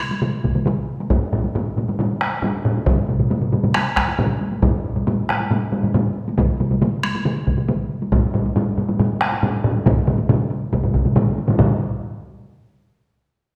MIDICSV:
0, 0, Header, 1, 2, 480
1, 0, Start_track
1, 0, Tempo, 439239
1, 1215, Time_signature, 4, 2, 24, 8
1, 7448, Tempo, 433213
1, 14915, End_track
2, 0, Start_track
2, 0, Title_t, "Taiko and cinematic ensemble drums"
2, 0, Note_on_c, 9, 37, 76
2, 0, Note_on_c, 9, 48, 56
2, 105, Note_off_c, 9, 48, 0
2, 106, Note_off_c, 9, 37, 0
2, 120, Note_on_c, 9, 48, 54
2, 230, Note_off_c, 9, 48, 0
2, 237, Note_on_c, 9, 47, 91
2, 243, Note_on_c, 9, 48, 64
2, 346, Note_off_c, 9, 47, 0
2, 352, Note_off_c, 9, 48, 0
2, 481, Note_on_c, 9, 47, 71
2, 484, Note_on_c, 9, 41, 71
2, 487, Note_on_c, 9, 48, 50
2, 590, Note_off_c, 9, 47, 0
2, 593, Note_off_c, 9, 41, 0
2, 597, Note_off_c, 9, 48, 0
2, 601, Note_on_c, 9, 47, 69
2, 607, Note_on_c, 9, 48, 49
2, 711, Note_off_c, 9, 47, 0
2, 716, Note_off_c, 9, 48, 0
2, 717, Note_on_c, 9, 47, 95
2, 732, Note_on_c, 9, 48, 76
2, 827, Note_off_c, 9, 47, 0
2, 841, Note_off_c, 9, 48, 0
2, 1097, Note_on_c, 9, 48, 59
2, 1206, Note_off_c, 9, 48, 0
2, 1206, Note_on_c, 9, 41, 87
2, 1208, Note_on_c, 9, 45, 96
2, 1214, Note_on_c, 9, 48, 63
2, 1315, Note_off_c, 9, 41, 0
2, 1317, Note_off_c, 9, 45, 0
2, 1323, Note_off_c, 9, 48, 0
2, 1453, Note_on_c, 9, 45, 93
2, 1453, Note_on_c, 9, 48, 50
2, 1562, Note_off_c, 9, 45, 0
2, 1562, Note_off_c, 9, 48, 0
2, 1576, Note_on_c, 9, 48, 48
2, 1685, Note_off_c, 9, 48, 0
2, 1695, Note_on_c, 9, 45, 89
2, 1700, Note_on_c, 9, 48, 66
2, 1805, Note_off_c, 9, 45, 0
2, 1809, Note_off_c, 9, 48, 0
2, 1939, Note_on_c, 9, 45, 70
2, 1944, Note_on_c, 9, 48, 54
2, 2048, Note_off_c, 9, 45, 0
2, 2054, Note_off_c, 9, 48, 0
2, 2060, Note_on_c, 9, 45, 63
2, 2066, Note_on_c, 9, 48, 56
2, 2169, Note_off_c, 9, 45, 0
2, 2174, Note_on_c, 9, 45, 94
2, 2175, Note_off_c, 9, 48, 0
2, 2187, Note_on_c, 9, 48, 62
2, 2283, Note_off_c, 9, 45, 0
2, 2296, Note_off_c, 9, 48, 0
2, 2414, Note_on_c, 9, 37, 81
2, 2428, Note_on_c, 9, 48, 50
2, 2523, Note_off_c, 9, 37, 0
2, 2537, Note_off_c, 9, 48, 0
2, 2650, Note_on_c, 9, 45, 97
2, 2669, Note_on_c, 9, 48, 70
2, 2759, Note_off_c, 9, 45, 0
2, 2778, Note_off_c, 9, 48, 0
2, 2896, Note_on_c, 9, 45, 104
2, 3005, Note_off_c, 9, 45, 0
2, 3030, Note_on_c, 9, 48, 48
2, 3129, Note_on_c, 9, 47, 103
2, 3132, Note_on_c, 9, 41, 102
2, 3137, Note_on_c, 9, 45, 98
2, 3139, Note_off_c, 9, 48, 0
2, 3150, Note_on_c, 9, 48, 61
2, 3239, Note_off_c, 9, 47, 0
2, 3241, Note_off_c, 9, 41, 0
2, 3246, Note_off_c, 9, 45, 0
2, 3259, Note_off_c, 9, 48, 0
2, 3375, Note_on_c, 9, 47, 69
2, 3378, Note_on_c, 9, 45, 66
2, 3386, Note_on_c, 9, 48, 49
2, 3484, Note_off_c, 9, 47, 0
2, 3487, Note_off_c, 9, 45, 0
2, 3489, Note_on_c, 9, 47, 64
2, 3495, Note_off_c, 9, 48, 0
2, 3496, Note_on_c, 9, 45, 67
2, 3599, Note_off_c, 9, 47, 0
2, 3605, Note_off_c, 9, 45, 0
2, 3609, Note_on_c, 9, 47, 72
2, 3618, Note_on_c, 9, 48, 63
2, 3619, Note_on_c, 9, 45, 72
2, 3718, Note_off_c, 9, 47, 0
2, 3727, Note_off_c, 9, 48, 0
2, 3728, Note_off_c, 9, 45, 0
2, 3733, Note_on_c, 9, 47, 69
2, 3738, Note_on_c, 9, 45, 63
2, 3842, Note_off_c, 9, 47, 0
2, 3847, Note_off_c, 9, 45, 0
2, 3851, Note_on_c, 9, 47, 69
2, 3858, Note_on_c, 9, 45, 70
2, 3858, Note_on_c, 9, 48, 54
2, 3960, Note_off_c, 9, 47, 0
2, 3967, Note_off_c, 9, 48, 0
2, 3968, Note_off_c, 9, 45, 0
2, 3973, Note_on_c, 9, 47, 62
2, 3975, Note_on_c, 9, 45, 71
2, 3981, Note_on_c, 9, 48, 56
2, 4082, Note_off_c, 9, 47, 0
2, 4084, Note_off_c, 9, 45, 0
2, 4090, Note_off_c, 9, 48, 0
2, 4091, Note_on_c, 9, 37, 73
2, 4093, Note_off_c, 9, 37, 0
2, 4093, Note_on_c, 9, 37, 75
2, 4094, Note_on_c, 9, 48, 63
2, 4203, Note_off_c, 9, 37, 0
2, 4204, Note_off_c, 9, 48, 0
2, 4335, Note_on_c, 9, 41, 69
2, 4335, Note_on_c, 9, 48, 49
2, 4338, Note_on_c, 9, 37, 64
2, 4444, Note_off_c, 9, 41, 0
2, 4445, Note_off_c, 9, 48, 0
2, 4447, Note_off_c, 9, 37, 0
2, 4452, Note_on_c, 9, 48, 50
2, 4562, Note_off_c, 9, 48, 0
2, 4575, Note_on_c, 9, 47, 99
2, 4576, Note_on_c, 9, 48, 67
2, 4578, Note_on_c, 9, 45, 102
2, 4685, Note_off_c, 9, 47, 0
2, 4685, Note_off_c, 9, 48, 0
2, 4688, Note_off_c, 9, 45, 0
2, 4821, Note_on_c, 9, 48, 48
2, 4930, Note_off_c, 9, 48, 0
2, 4939, Note_on_c, 9, 48, 52
2, 5048, Note_off_c, 9, 48, 0
2, 5054, Note_on_c, 9, 41, 92
2, 5059, Note_on_c, 9, 45, 96
2, 5059, Note_on_c, 9, 48, 70
2, 5164, Note_off_c, 9, 41, 0
2, 5168, Note_off_c, 9, 45, 0
2, 5168, Note_off_c, 9, 48, 0
2, 5295, Note_on_c, 9, 45, 62
2, 5405, Note_off_c, 9, 45, 0
2, 5421, Note_on_c, 9, 45, 71
2, 5422, Note_on_c, 9, 48, 50
2, 5530, Note_off_c, 9, 45, 0
2, 5532, Note_off_c, 9, 48, 0
2, 5541, Note_on_c, 9, 48, 68
2, 5542, Note_on_c, 9, 45, 87
2, 5650, Note_off_c, 9, 48, 0
2, 5651, Note_off_c, 9, 45, 0
2, 5781, Note_on_c, 9, 37, 68
2, 5782, Note_on_c, 9, 48, 53
2, 5891, Note_off_c, 9, 37, 0
2, 5892, Note_off_c, 9, 48, 0
2, 5902, Note_on_c, 9, 48, 58
2, 6012, Note_off_c, 9, 48, 0
2, 6017, Note_on_c, 9, 45, 96
2, 6022, Note_on_c, 9, 48, 65
2, 6126, Note_off_c, 9, 45, 0
2, 6131, Note_off_c, 9, 48, 0
2, 6257, Note_on_c, 9, 45, 76
2, 6265, Note_on_c, 9, 48, 53
2, 6366, Note_off_c, 9, 45, 0
2, 6374, Note_off_c, 9, 48, 0
2, 6374, Note_on_c, 9, 45, 71
2, 6381, Note_on_c, 9, 48, 55
2, 6483, Note_off_c, 9, 45, 0
2, 6490, Note_off_c, 9, 48, 0
2, 6495, Note_on_c, 9, 45, 97
2, 6496, Note_on_c, 9, 48, 73
2, 6605, Note_off_c, 9, 45, 0
2, 6605, Note_off_c, 9, 48, 0
2, 6860, Note_on_c, 9, 48, 57
2, 6968, Note_on_c, 9, 47, 102
2, 6969, Note_off_c, 9, 48, 0
2, 6970, Note_on_c, 9, 41, 100
2, 6982, Note_on_c, 9, 48, 71
2, 7077, Note_off_c, 9, 47, 0
2, 7080, Note_off_c, 9, 41, 0
2, 7091, Note_off_c, 9, 48, 0
2, 7214, Note_on_c, 9, 47, 71
2, 7218, Note_on_c, 9, 48, 54
2, 7323, Note_off_c, 9, 47, 0
2, 7327, Note_off_c, 9, 48, 0
2, 7331, Note_on_c, 9, 47, 66
2, 7344, Note_on_c, 9, 48, 54
2, 7441, Note_off_c, 9, 47, 0
2, 7448, Note_on_c, 9, 47, 96
2, 7454, Note_off_c, 9, 48, 0
2, 7454, Note_on_c, 9, 48, 70
2, 7559, Note_off_c, 9, 47, 0
2, 7565, Note_off_c, 9, 48, 0
2, 7690, Note_on_c, 9, 37, 80
2, 7699, Note_on_c, 9, 48, 57
2, 7801, Note_off_c, 9, 37, 0
2, 7810, Note_off_c, 9, 48, 0
2, 7815, Note_on_c, 9, 48, 55
2, 7926, Note_off_c, 9, 48, 0
2, 7931, Note_on_c, 9, 48, 66
2, 7934, Note_on_c, 9, 47, 93
2, 8042, Note_off_c, 9, 48, 0
2, 8045, Note_off_c, 9, 47, 0
2, 8170, Note_on_c, 9, 48, 48
2, 8172, Note_on_c, 9, 47, 66
2, 8174, Note_on_c, 9, 41, 72
2, 8281, Note_off_c, 9, 48, 0
2, 8283, Note_off_c, 9, 47, 0
2, 8285, Note_off_c, 9, 41, 0
2, 8291, Note_on_c, 9, 47, 69
2, 8292, Note_on_c, 9, 48, 52
2, 8402, Note_off_c, 9, 47, 0
2, 8403, Note_off_c, 9, 48, 0
2, 8412, Note_on_c, 9, 47, 98
2, 8412, Note_on_c, 9, 48, 71
2, 8523, Note_off_c, 9, 47, 0
2, 8523, Note_off_c, 9, 48, 0
2, 8782, Note_on_c, 9, 48, 51
2, 8893, Note_off_c, 9, 48, 0
2, 8895, Note_on_c, 9, 45, 98
2, 8898, Note_on_c, 9, 48, 66
2, 8899, Note_on_c, 9, 41, 88
2, 9006, Note_off_c, 9, 45, 0
2, 9009, Note_off_c, 9, 48, 0
2, 9010, Note_off_c, 9, 41, 0
2, 9136, Note_on_c, 9, 45, 88
2, 9145, Note_on_c, 9, 48, 53
2, 9247, Note_off_c, 9, 45, 0
2, 9255, Note_off_c, 9, 48, 0
2, 9268, Note_on_c, 9, 48, 51
2, 9378, Note_off_c, 9, 48, 0
2, 9379, Note_on_c, 9, 45, 98
2, 9386, Note_on_c, 9, 48, 64
2, 9490, Note_off_c, 9, 45, 0
2, 9497, Note_off_c, 9, 48, 0
2, 9621, Note_on_c, 9, 45, 72
2, 9625, Note_on_c, 9, 48, 53
2, 9732, Note_off_c, 9, 45, 0
2, 9736, Note_off_c, 9, 48, 0
2, 9742, Note_on_c, 9, 48, 55
2, 9744, Note_on_c, 9, 45, 70
2, 9853, Note_off_c, 9, 48, 0
2, 9855, Note_off_c, 9, 45, 0
2, 9863, Note_on_c, 9, 45, 100
2, 9870, Note_on_c, 9, 48, 61
2, 9974, Note_off_c, 9, 45, 0
2, 9981, Note_off_c, 9, 48, 0
2, 10101, Note_on_c, 9, 37, 82
2, 10108, Note_on_c, 9, 48, 51
2, 10212, Note_off_c, 9, 37, 0
2, 10219, Note_off_c, 9, 48, 0
2, 10230, Note_on_c, 9, 48, 51
2, 10340, Note_off_c, 9, 48, 0
2, 10343, Note_on_c, 9, 45, 103
2, 10346, Note_on_c, 9, 48, 71
2, 10454, Note_off_c, 9, 45, 0
2, 10457, Note_off_c, 9, 48, 0
2, 10580, Note_on_c, 9, 45, 107
2, 10691, Note_off_c, 9, 45, 0
2, 10711, Note_on_c, 9, 48, 53
2, 10820, Note_on_c, 9, 45, 100
2, 10821, Note_on_c, 9, 47, 99
2, 10822, Note_off_c, 9, 48, 0
2, 10825, Note_on_c, 9, 41, 105
2, 10829, Note_on_c, 9, 48, 64
2, 10931, Note_off_c, 9, 45, 0
2, 10932, Note_off_c, 9, 47, 0
2, 10936, Note_off_c, 9, 41, 0
2, 10940, Note_off_c, 9, 48, 0
2, 11058, Note_on_c, 9, 47, 101
2, 11060, Note_on_c, 9, 48, 50
2, 11064, Note_on_c, 9, 45, 89
2, 11169, Note_off_c, 9, 47, 0
2, 11171, Note_off_c, 9, 48, 0
2, 11175, Note_off_c, 9, 45, 0
2, 11180, Note_on_c, 9, 48, 52
2, 11291, Note_off_c, 9, 48, 0
2, 11300, Note_on_c, 9, 45, 99
2, 11301, Note_on_c, 9, 47, 92
2, 11302, Note_on_c, 9, 48, 65
2, 11411, Note_off_c, 9, 45, 0
2, 11412, Note_off_c, 9, 47, 0
2, 11413, Note_off_c, 9, 48, 0
2, 11541, Note_on_c, 9, 48, 53
2, 11652, Note_off_c, 9, 48, 0
2, 11782, Note_on_c, 9, 45, 67
2, 11782, Note_on_c, 9, 48, 64
2, 11783, Note_on_c, 9, 47, 71
2, 11786, Note_on_c, 9, 41, 69
2, 11893, Note_off_c, 9, 45, 0
2, 11893, Note_off_c, 9, 48, 0
2, 11894, Note_off_c, 9, 47, 0
2, 11897, Note_off_c, 9, 41, 0
2, 11901, Note_on_c, 9, 47, 68
2, 11903, Note_on_c, 9, 45, 73
2, 12012, Note_off_c, 9, 47, 0
2, 12014, Note_off_c, 9, 45, 0
2, 12018, Note_on_c, 9, 45, 77
2, 12020, Note_on_c, 9, 47, 62
2, 12024, Note_on_c, 9, 48, 47
2, 12028, Note_on_c, 9, 41, 73
2, 12129, Note_off_c, 9, 45, 0
2, 12130, Note_off_c, 9, 47, 0
2, 12135, Note_off_c, 9, 48, 0
2, 12139, Note_off_c, 9, 41, 0
2, 12140, Note_on_c, 9, 45, 63
2, 12142, Note_on_c, 9, 47, 61
2, 12147, Note_on_c, 9, 48, 49
2, 12250, Note_off_c, 9, 45, 0
2, 12253, Note_off_c, 9, 47, 0
2, 12258, Note_off_c, 9, 48, 0
2, 12258, Note_on_c, 9, 47, 99
2, 12262, Note_on_c, 9, 45, 100
2, 12266, Note_on_c, 9, 48, 68
2, 12369, Note_off_c, 9, 47, 0
2, 12373, Note_off_c, 9, 45, 0
2, 12376, Note_off_c, 9, 48, 0
2, 12507, Note_on_c, 9, 48, 50
2, 12613, Note_on_c, 9, 47, 91
2, 12618, Note_off_c, 9, 48, 0
2, 12619, Note_on_c, 9, 45, 97
2, 12631, Note_on_c, 9, 48, 51
2, 12724, Note_off_c, 9, 47, 0
2, 12729, Note_off_c, 9, 45, 0
2, 12735, Note_on_c, 9, 47, 107
2, 12737, Note_on_c, 9, 45, 113
2, 12740, Note_on_c, 9, 41, 68
2, 12742, Note_off_c, 9, 48, 0
2, 12744, Note_on_c, 9, 48, 65
2, 12846, Note_off_c, 9, 47, 0
2, 12848, Note_off_c, 9, 45, 0
2, 12851, Note_off_c, 9, 41, 0
2, 12854, Note_off_c, 9, 48, 0
2, 14915, End_track
0, 0, End_of_file